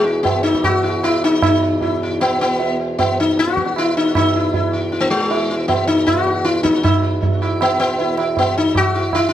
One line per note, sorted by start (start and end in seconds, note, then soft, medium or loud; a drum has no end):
0.00 6.82 E2 medium
0.00 6.82 B2 medium
0.04 0.23 E4 soft
0.23 0.43 B3 medium
0.23 tabla tin medium
0.23 tabla ge medium
0.43 0.64 D#4 medium
0.43 tabla na medium
0.55 tabla ke medium
0.64 1.04 F#4 loud
0.64 tabla na medium
0.64 tabla ge medium
0.83 1.02 E4 soft
1.03 1.24 E4 medium
1.03 tabla na medium
1.24 1.42 D#4 medium
1.42 1.97 D#4 medium
1.42 tabla na loud
1.42 tabla ge medium
1.81 2.00 E4 soft
1.81 tabla tin medium
1.81 tabla ge medium
2.03 2.20 E4 soft
2.20 2.40 B3 loud
2.20 tabla na medium
2.41 2.77 B3 medium
2.60 tabla tin medium
2.99 3.18 B3 medium
2.99 tabla tin medium
2.99 tabla ge medium
3.20 3.39 D#4 medium
3.37 3.78 F#4 loud
3.37 tabla te medium
3.47 tabla te medium
3.57 tabla ke medium
3.66 tabla te medium
3.76 3.97 E4 medium
3.76 tabla na medium
3.97 4.15 D#4 medium
4.15 4.70 D#4 medium
4.15 tabla na loud
4.15 tabla ge medium
4.36 4.53 E4 soft
4.54 4.72 E4 soft
4.54 tabla tin medium
4.54 tabla ge medium
4.73 4.91 E4 soft
4.92 5.10 E4 soft
4.92 tabla te medium
5.00 5.10 A#3 medium
5.10 5.56 G#3 medium
5.10 tabla te medium
5.30 5.48 E4 soft
5.30 tabla tin medium
5.50 5.68 E4 soft
5.68 5.87 B3 medium
5.68 tabla tin medium
5.68 tabla ge medium
5.87 6.08 D#4 medium
6.07 6.47 F#4 medium
6.07 tabla na medium
6.07 tabla ge medium
6.27 tabla te medium
6.45 6.63 E4 medium
6.45 tabla te medium
6.55 tabla te medium
6.63 6.82 D#4 medium
6.63 tabla ke medium
6.75 tabla te medium
6.83 9.33 E2 medium
6.83 9.33 B2 medium
6.83 7.37 D#4 medium
6.83 tabla na medium
6.83 tabla ge medium
7.23 tabla tin medium
7.23 tabla ge medium
7.42 7.60 E4 soft
7.42 tabla na medium
7.61 7.78 B3 medium
7.61 tabla na medium
7.80 8.15 B3 medium
7.99 8.17 E4 soft
7.99 tabla tin medium
8.18 8.36 E4 soft
8.18 tabla na medium
8.37 8.57 B3 medium
8.37 tabla tin medium
8.37 tabla ge medium
8.58 8.76 D#4 medium
8.75 9.15 F#4 loud
8.75 tabla na medium
8.75 tabla ge medium
8.95 9.12 E4 soft
9.13 9.27 E4 medium
9.13 tabla na medium
9.13 tabla ge medium
9.29 9.33 E4 medium